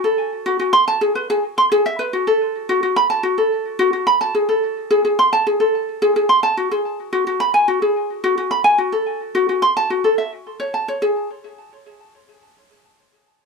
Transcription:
0.04 0.44 A4 medium
0.46 0.58 F#4 loud
0.59 0.72 F#4 medium
0.73 0.86 C6 loud
0.88 1.00 A5 loud
1.01 1.14 G#4 medium
1.15 1.28 B4 medium
1.30 1.42 G#4 loud
1.58 1.65 C6 loud
1.72 1.84 G#4 loud
1.86 1.98 E5 medium
1.99 2.12 B4 medium
2.13 2.25 F#4 medium
2.27 2.67 A4 medium
2.69 2.81 F#4 medium
2.83 2.95 F#4 medium
2.96 3.09 B5 loud
3.10 3.22 A5 medium
3.23 3.36 F#4 medium
3.38 3.78 A4 medium
3.79 3.92 F#4 loud
3.93 4.05 F#4 medium
4.07 4.20 B5 medium
4.21 4.33 A5 loud
4.35 4.47 G#4 medium
4.49 4.89 A4 medium
4.91 5.03 G#4 medium
5.05 5.17 G#4 medium
5.19 5.32 C6 loud
5.33 5.45 A5 medium
5.47 5.59 G#4 medium
5.60 6.00 A4 medium
6.02 6.14 G#4 medium
6.16 6.28 G#4 medium
6.29 6.42 C6 medium
6.43 6.55 A5 medium
6.57 6.70 F#4 medium
6.71 7.11 G#4 medium
7.13 7.25 F#4 medium
7.27 7.39 F#4 medium
7.40 7.53 B5 medium
7.54 7.66 G#5 medium
7.68 7.80 F#4 medium
7.82 8.22 G#4 medium
8.24 8.36 F#4 medium
8.38 8.50 F#4 medium
8.51 8.64 B5 medium
8.64 8.77 G#5 medium
8.78 8.91 F#4 medium
8.92 9.33 A4 medium
9.35 9.47 F#4 medium
9.49 9.61 F#4 medium
9.62 9.75 C6 medium
9.77 9.89 A5 medium
9.90 10.03 F#4 medium
10.04 10.17 A4 medium
10.18 10.30 E5 medium
10.60 10.72 C#5 medium
10.74 10.87 A5 medium
10.88 11.00 C#5 medium
11.02 11.27 G#4 medium

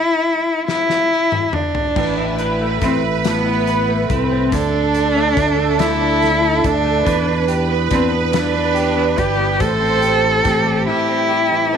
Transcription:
0.00 0.67 E4 medium
0.68 1.56 E4 loud
0.68 snare medium
0.89 snare soft
1.32 mid tom medium
1.53 2.40 D4 medium
1.53 mid tom medium
1.75 floor tom medium
1.96 2.78 A1 medium
1.96 3.23 A2 medium
1.96 4.48 B4 loud
1.96 kick loud
1.96 crash medium
2.18 2.81 E4 medium
2.39 3.67 B4 medium
2.39 closed hi-hat soft
2.61 3.88 A3 medium
2.82 4.06 A1 loud
2.82 3.02 C4 medium
2.82 3.45 E4 medium
2.82 kick medium
2.82 snare soft
2.82 closed hi-hat medium
3.25 4.61 A2 medium
3.25 4.06 B3 medium
3.25 snare loud
3.25 closed hi-hat loud
3.46 4.09 E4 medium
3.67 4.61 B4 medium
3.67 closed hi-hat soft
3.88 5.15 A3 medium
4.10 4.50 C2 medium
4.10 4.54 C4 medium
4.10 4.61 E4 medium
4.10 kick medium
4.10 closed hi-hat medium
4.32 4.61 C4 medium
4.52 5.33 D2 medium
4.52 5.79 D3 medium
4.52 5.81 D4 loud
4.52 7.02 A4 loud
4.52 kick medium
4.52 closed hi-hat medium
4.74 5.37 D4 medium
4.94 closed hi-hat soft
5.16 5.57 A3 medium
5.37 6.60 D2 loud
5.37 6.01 D4 medium
5.37 kick loud
5.37 snare soft
5.37 closed hi-hat medium
5.59 6.41 A3 medium
5.79 7.05 D3 medium
5.79 6.67 E4 loud
5.79 snare loud
5.79 closed hi-hat loud
6.01 6.63 D4 medium
6.22 snare soft
6.22 closed hi-hat soft
6.42 6.83 A3 medium
6.63 7.04 D2 medium
6.63 7.26 D4 soft
6.63 7.50 D4 loud
6.63 kick medium
6.63 closed hi-hat medium
6.84 7.15 A3 medium
7.05 7.87 E2 loud
7.05 8.32 E3 medium
7.05 9.60 B4 loud
7.05 kick medium
7.05 closed hi-hat loud
7.26 7.89 D4 medium
7.48 8.74 G4 medium
7.48 closed hi-hat soft
7.69 8.11 B3 medium
7.91 9.14 E2 loud
7.91 8.12 C4 medium
7.91 8.53 D4 medium
7.91 kick medium
7.91 snare soft
7.91 closed hi-hat medium
8.12 8.95 B3 medium
8.33 10.23 E3 medium
8.33 9.20 D4 medium
8.33 snare loud
8.33 closed hi-hat loud
8.55 9.17 D4 medium
8.74 10.01 G4 medium
8.74 closed hi-hat soft
8.96 9.38 B3 medium
9.18 9.58 G1 medium
9.18 9.69 D4 medium
9.18 9.62 G4 medium
9.18 kick medium
9.18 closed hi-hat medium
9.39 9.69 B3 medium
9.60 10.41 A1 medium
9.60 10.86 A2 medium
9.60 10.87 A4 loud
9.60 10.41 C5 loud
9.60 kick loud
9.60 closed hi-hat medium
9.80 10.44 C4 medium
10.01 11.30 G4 medium
10.01 closed hi-hat soft
10.23 11.51 E3 medium
10.44 10.86 A1 loud
10.44 11.08 C4 medium
10.44 11.74 G4 loud
10.44 kick loud
10.44 snare soft
10.44 closed hi-hat medium
10.65 11.77 G3 medium
10.87 11.77 A2 medium
10.87 11.76 E4 loud
11.09 11.73 C4 medium
11.31 11.77 G4 medium
11.52 11.77 E3 medium
11.73 11.77 C4 medium
11.73 11.77 A4 medium

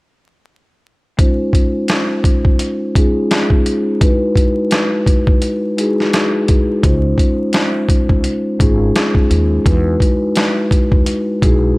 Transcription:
1.17 2.53 G#3 medium
1.17 2.53 C#4 medium
1.17 2.53 D#4 medium
1.17 2.53 F4 medium
1.17 2.54 C5 medium
1.17 kick loud
1.17 closed hi-hat medium
1.53 kick medium
1.53 closed hi-hat medium
1.88 snare loud
1.88 closed hi-hat medium
2.24 kick medium
2.24 closed hi-hat medium
2.45 kick loud
2.59 closed hi-hat medium
2.94 3.96 G#3 medium
2.94 3.96 C#4 medium
2.94 3.96 D#4 medium
2.94 3.97 F4 medium
2.94 3.97 G#4 medium
2.94 kick loud
2.94 closed hi-hat medium
3.31 snare loud
3.31 closed hi-hat medium
3.50 kick medium
3.66 closed hi-hat medium
4.00 5.35 G#3 medium
4.00 5.35 D#4 medium
4.00 5.36 E4 medium
4.00 5.36 F#4 medium
4.00 5.36 B4 medium
4.00 kick loud
4.00 closed hi-hat medium
4.36 kick medium
4.36 closed hi-hat medium
4.71 snare loud
4.71 closed hi-hat medium
5.06 kick medium
5.06 closed hi-hat medium
5.27 kick loud
5.42 closed hi-hat medium
5.77 6.78 G#3 medium
5.77 6.78 D#4 medium
5.77 6.79 E4 medium
5.77 6.79 F#4 medium
5.77 6.79 G#4 loud
5.77 closed hi-hat medium
6.00 snare soft
6.13 snare loud
6.13 closed hi-hat medium
6.48 kick medium
6.48 closed hi-hat medium
6.82 7.12 C#2 loud
6.82 8.17 G#3 medium
6.82 8.18 C#4 medium
6.82 8.18 D#4 medium
6.82 8.18 F4 medium
6.82 8.18 C5 medium
6.82 kick loud
6.82 closed hi-hat medium
7.18 kick medium
7.18 closed hi-hat medium
7.53 snare loud
7.53 closed hi-hat medium
7.89 kick medium
7.89 closed hi-hat medium
8.09 8.21 C2 medium
8.09 kick loud
8.24 closed hi-hat medium
8.59 8.88 G#1 medium
8.59 9.60 G#3 medium
8.59 9.61 C#4 medium
8.59 9.61 D#4 medium
8.59 9.61 F4 medium
8.59 9.61 G#4 loud
8.59 kick loud
8.59 closed hi-hat medium
8.96 snare loud
8.96 closed hi-hat medium
9.15 kick medium
9.30 9.59 D#2 medium
9.30 closed hi-hat medium
9.65 9.94 E2 loud
9.65 11.00 G#3 medium
9.65 11.00 D#4 medium
9.65 11.00 E4 medium
9.65 11.01 F#4 medium
9.65 11.01 B4 medium
9.65 kick loud
9.65 closed hi-hat medium
10.00 kick medium
10.00 closed hi-hat medium
10.35 snare loud
10.35 closed hi-hat medium
10.71 kick medium
10.71 closed hi-hat medium
10.92 11.03 D#2 medium
10.92 kick loud
11.06 closed hi-hat medium
11.42 11.71 B1 medium
11.42 11.78 G#3 medium
11.42 11.78 D#4 medium
11.42 11.78 E4 medium
11.42 11.78 F#4 medium
11.42 11.78 G#4 loud
11.42 kick loud
11.42 closed hi-hat medium

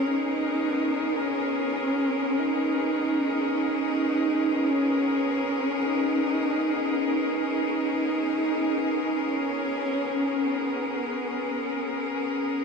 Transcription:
0.00 12.64 B3 medium
0.00 12.64 C#4 medium
0.00 12.64 G#4 medium
0.00 12.64 A#4 medium
0.07 1.23 D#4 loud
1.22 2.40 C#4 medium
2.38 3.53 D#4 medium
3.54 4.70 D#4 loud
4.68 5.84 C#4 medium
5.82 6.99 D#4 medium
6.99 9.31 D#4 medium
9.30 10.46 C#4 loud
10.45 12.20 B3 medium

